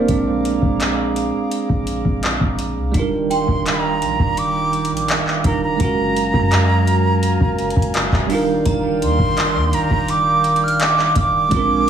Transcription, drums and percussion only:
0.08 kick, closed hi-hat
0.45 closed hi-hat
0.62 kick
0.80 clap, closed hi-hat
1.16 closed hi-hat
1.51 closed hi-hat
1.69 kick
1.87 closed hi-hat
2.05 kick
2.23 clap, closed hi-hat
2.41 kick
2.59 closed hi-hat
2.94 kick, closed hi-hat
3.31 closed hi-hat
3.48 kick
3.66 clap, closed hi-hat
4.02 closed hi-hat
4.19 kick
4.37 closed hi-hat
4.73 closed hi-hat
4.85 closed hi-hat
4.97 closed hi-hat
5.08 clap, closed hi-hat
5.28 clap
5.44 kick, closed hi-hat
5.80 kick, closed hi-hat
6.17 closed hi-hat
6.34 kick
6.52 clap, closed hi-hat
6.87 closed hi-hat
7.23 closed hi-hat
7.41 kick
7.58 closed hi-hat
7.70 closed hi-hat
7.76 kick
7.82 closed hi-hat
7.94 clap, closed hi-hat
8.12 kick, clap
8.30 open hi-hat
8.66 kick, closed hi-hat
9.02 closed hi-hat
9.19 kick
9.37 clap, closed hi-hat
9.73 closed hi-hat
9.91 kick
10.08 closed hi-hat
10.44 closed hi-hat
10.56 closed hi-hat
10.68 closed hi-hat
10.80 clap, closed hi-hat
10.99 clap
11.16 kick, closed hi-hat
11.51 kick, closed hi-hat

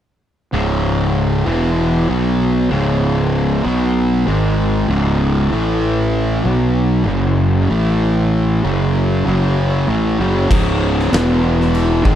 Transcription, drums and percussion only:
10.51 kick, crash
10.99 snare
11.13 snare, crash
11.61 snare
11.75 crash
12.05 kick

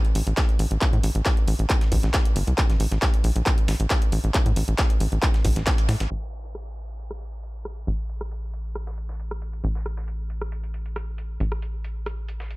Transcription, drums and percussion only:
0.05 closed hi-hat
0.15 closed hi-hat, open hi-hat
0.27 closed hi-hat
0.37 kick, snare, clap, closed hi-hat
0.49 closed hi-hat
0.59 closed hi-hat, open hi-hat
0.71 closed hi-hat
0.81 kick, clap, closed hi-hat
0.93 closed hi-hat
1.03 closed hi-hat, open hi-hat
1.15 closed hi-hat
1.26 kick, snare, clap, closed hi-hat
1.37 closed hi-hat
1.48 closed hi-hat, open hi-hat
1.59 closed hi-hat
1.70 kick, clap, closed hi-hat
1.81 snare, closed hi-hat
1.92 kick, closed hi-hat, open hi-hat
2.03 snare, closed hi-hat
2.14 kick, snare, clap, closed hi-hat
2.25 closed hi-hat
2.36 closed hi-hat, open hi-hat
2.47 closed hi-hat
2.58 kick, clap, closed hi-hat
2.70 snare, closed hi-hat
2.80 closed hi-hat, open hi-hat
2.92 snare, closed hi-hat
3.02 kick, snare, clap, closed hi-hat
3.14 closed hi-hat
3.24 closed hi-hat, open hi-hat
3.36 closed hi-hat
3.46 kick, clap, closed hi-hat
3.58 closed hi-hat
3.68 snare, closed hi-hat, open hi-hat
3.80 closed hi-hat
3.90 kick, snare, clap, closed hi-hat
4.02 closed hi-hat
4.12 closed hi-hat, open hi-hat
4.24 closed hi-hat
4.34 kick, clap, closed hi-hat
4.46 closed hi-hat
4.56 closed hi-hat, open hi-hat
4.68 closed hi-hat
4.78 kick, snare, clap, closed hi-hat
4.90 closed hi-hat
5.00 closed hi-hat, open hi-hat
5.12 closed hi-hat
5.22 kick, clap, closed hi-hat
5.34 snare, closed hi-hat
5.45 kick, closed hi-hat, open hi-hat
5.56 snare, closed hi-hat
5.67 kick, snare, clap, closed hi-hat
5.78 closed hi-hat
5.89 snare, closed hi-hat, open hi-hat
6.00 snare, closed hi-hat
6.11 closed hi-hat
6.22 snare
6.33 closed hi-hat
6.44 snare
6.55 cross-stick, closed hi-hat
6.77 closed hi-hat
6.99 closed hi-hat
7.11 cross-stick, closed hi-hat
7.21 closed hi-hat
7.33 closed hi-hat
7.43 closed hi-hat
7.65 cross-stick, closed hi-hat
7.87 closed hi-hat
8.09 closed hi-hat
8.21 cross-stick
8.31 closed hi-hat
8.53 closed hi-hat
8.75 cross-stick, closed hi-hat
8.87 snare
8.97 closed hi-hat
9.09 snare
9.20 closed hi-hat
9.31 cross-stick
9.42 closed hi-hat
9.53 closed hi-hat
9.64 closed hi-hat
9.75 snare
9.86 cross-stick, closed hi-hat
9.97 snare
10.08 closed hi-hat
10.30 closed hi-hat
10.41 cross-stick
10.52 closed hi-hat
10.64 closed hi-hat
10.74 closed hi-hat
10.86 closed hi-hat
10.96 cross-stick, closed hi-hat
11.18 closed hi-hat
11.40 closed hi-hat
11.52 cross-stick
11.62 closed hi-hat
11.84 closed hi-hat
12.06 cross-stick, closed hi-hat
12.28 closed hi-hat
12.40 snare
12.51 closed hi-hat

